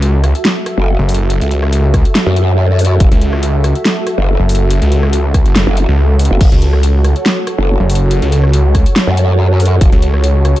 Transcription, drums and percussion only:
0.02 closed hi-hat
0.24 cross-stick, closed hi-hat
0.35 closed hi-hat
0.45 snare, closed hi-hat
0.66 cross-stick, closed hi-hat
1.09 open hi-hat
1.14 closed hi-hat
1.30 closed hi-hat
1.41 closed hi-hat
1.51 closed hi-hat
1.63 cross-stick
1.73 closed hi-hat
1.94 kick, cross-stick, closed hi-hat
2.05 closed hi-hat
2.15 snare, closed hi-hat
2.36 closed hi-hat
2.79 open hi-hat
2.85 closed hi-hat
3.00 kick, closed hi-hat
3.12 closed hi-hat
3.22 closed hi-hat
3.33 cross-stick
3.43 closed hi-hat
3.64 cross-stick, closed hi-hat
3.75 closed hi-hat
3.85 snare, closed hi-hat
4.07 cross-stick, closed hi-hat
4.49 open hi-hat
4.55 closed hi-hat
4.70 closed hi-hat
4.82 closed hi-hat
4.92 closed hi-hat
5.03 cross-stick
5.13 closed hi-hat
5.34 kick, cross-stick, closed hi-hat
5.46 closed hi-hat
5.56 snare, closed hi-hat
5.77 closed hi-hat
6.19 open hi-hat
6.25 closed hi-hat
6.41 kick, closed hi-hat, crash
6.52 closed hi-hat
6.62 closed hi-hat
6.73 cross-stick
6.83 closed hi-hat
7.04 cross-stick, closed hi-hat
7.16 closed hi-hat
7.26 snare, closed hi-hat
7.47 cross-stick, closed hi-hat
7.90 open hi-hat
7.95 closed hi-hat
8.11 closed hi-hat
8.22 closed hi-hat
8.32 closed hi-hat
8.44 cross-stick
8.53 closed hi-hat
8.75 kick, cross-stick, closed hi-hat
8.86 closed hi-hat
8.96 snare, closed hi-hat
9.17 closed hi-hat
9.60 open hi-hat
9.66 closed hi-hat
9.81 kick, closed hi-hat
9.92 closed hi-hat
10.02 closed hi-hat
10.14 cross-stick
10.24 closed hi-hat
10.45 cross-stick, closed hi-hat
10.56 closed hi-hat

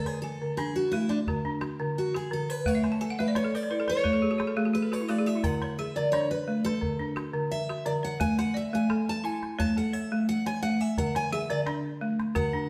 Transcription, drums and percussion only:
0.06 calabash click
0.58 calabash click
1.10 calabash click
1.27 calabash thump
1.61 calabash click
2.15 calabash click
2.66 calabash thump
2.84 calabash click
3.01 calabash click
3.35 calabash click
3.70 calabash click
3.88 calabash click
4.05 calabash thump
4.40 calabash click
4.58 calabash click
4.75 calabash click
4.93 calabash click
5.10 calabash click
5.44 calabash thump
5.62 calabash click
6.13 calabash click
6.66 calabash click
6.82 calabash thump
7.17 calabash click
7.70 calabash click
8.20 calabash thump
8.39 calabash click
8.90 calabash click
9.43 calabash click
9.60 calabash thump
10.46 calabash click
10.97 calabash thump
11.15 calabash click
11.67 calabash click
12.20 calabash click
12.36 calabash thump

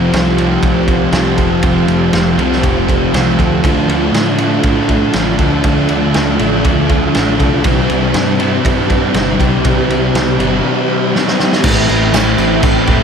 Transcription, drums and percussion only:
0.13 snare, ride
0.38 ride
0.63 kick, ride
0.88 kick, ride
1.12 snare, ride
1.38 kick, ride
1.62 kick, ride
1.88 ride
2.13 snare, ride
2.39 ride
2.52 snare
2.63 kick, ride
2.89 kick, ride
3.14 snare, ride
3.39 kick, ride
3.64 kick, ride
3.89 ride
4.14 snare, ride
4.38 ride
4.63 kick, ride
4.89 kick, ride
5.13 snare, ride
5.38 kick, ride
5.64 kick, ride
5.89 ride
6.14 snare, ride
6.39 ride
6.65 kick, ride
6.89 kick, ride
7.15 snare, ride
7.40 kick, ride
7.64 kick, ride
7.89 ride
8.14 snare, ride
8.40 ride
8.65 kick, ride
8.90 kick, ride
9.14 snare, ride
9.40 kick, ride
9.65 kick, ride
9.90 ride
10.15 snare, ride
10.40 ride
11.15 snare
11.28 snare
11.39 snare
11.52 snare
11.64 kick, crash
11.89 crash
12.14 snare, tambourine, crash
12.38 crash
12.63 kick, crash
12.87 kick, crash

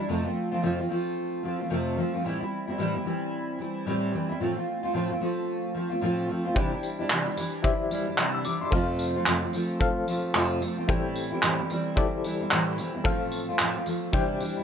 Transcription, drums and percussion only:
6.56 kick
6.83 tambourine
7.10 clap
7.37 tambourine
7.64 kick
7.91 tambourine
8.18 clap
8.45 tambourine
8.72 kick
8.99 tambourine
9.26 clap
9.53 tambourine
9.81 kick
10.08 tambourine
10.35 clap
10.62 tambourine
10.89 kick
11.16 tambourine
11.43 clap
11.70 tambourine
11.97 kick
12.24 tambourine
12.51 clap
12.78 tambourine
13.05 kick
13.32 tambourine
13.59 clap
13.86 tambourine
14.13 kick
14.40 tambourine

